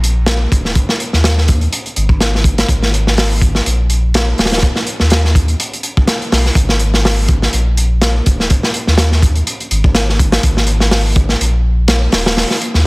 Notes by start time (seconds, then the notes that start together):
Already playing: A#1
0.04 closed hi-hat
0.26 snare, closed hi-hat
0.52 D#1, kick, closed hi-hat
0.65 snare
0.75 kick, closed hi-hat
0.89 snare
1.00 closed hi-hat
1.13 D#2, snare
1.24 snare, closed hi-hat
1.38 snare
1.48 kick, closed hi-hat
1.61 closed hi-hat
1.73 closed hi-hat
1.86 closed hi-hat
1.96 G#1, closed hi-hat
2.09 kick
2.20 snare, closed hi-hat
2.35 snare
2.44 kick, closed hi-hat
2.58 snare, closed hi-hat
2.69 G#1, kick, closed hi-hat
2.82 snare
2.94 closed hi-hat
3.07 snare
3.17 snare, open hi-hat
3.42 kick, closed hi-hat
3.55 snare
3.66 A#1, closed hi-hat
3.90 closed hi-hat
4.14 snare, closed hi-hat
4.38 D#1, snare, open hi-hat
4.45 snare, open hi-hat
4.51 snare, open hi-hat
4.58 snare, open hi-hat
4.63 kick, closed hi-hat
4.76 snare
4.87 closed hi-hat
5.00 D#2, snare
5.10 snare, closed hi-hat
5.25 snare
5.35 kick, closed hi-hat
5.48 closed hi-hat
5.60 closed hi-hat
5.73 closed hi-hat
5.83 closed hi-hat
5.97 kick
6.07 snare, closed hi-hat
6.22 closed hi-hat
6.32 B1, snare, open hi-hat
6.45 snare
6.55 G#1, kick, closed hi-hat
6.69 snare
6.79 closed hi-hat
6.94 snare
7.05 snare, open hi-hat
7.28 kick, closed hi-hat
7.42 snare
7.53 A#1, closed hi-hat
7.77 closed hi-hat
8.02 snare, closed hi-hat
8.26 D#1, kick, closed hi-hat
8.40 snare
8.50 kick, closed hi-hat
8.63 snare
8.74 closed hi-hat
8.87 D#2, snare
8.98 snare, closed hi-hat
9.12 snare
9.22 kick, closed hi-hat
9.35 closed hi-hat
9.47 closed hi-hat
9.60 closed hi-hat
9.71 G#1, closed hi-hat
9.84 kick
9.95 snare, closed hi-hat
10.09 snare
10.19 kick, closed hi-hat
10.32 snare, closed hi-hat
10.43 G#1, kick, closed hi-hat
10.57 snare
10.67 closed hi-hat
10.80 snare
10.91 snare, open hi-hat
11.16 kick, closed hi-hat
11.29 snare
11.40 A#1, closed hi-hat
11.88 snare, closed hi-hat
12.12 D#1, snare, open hi-hat
12.25 snare, open hi-hat
12.37 snare, open hi-hat
12.50 snare
12.62 closed hi-hat
12.74 D#2, snare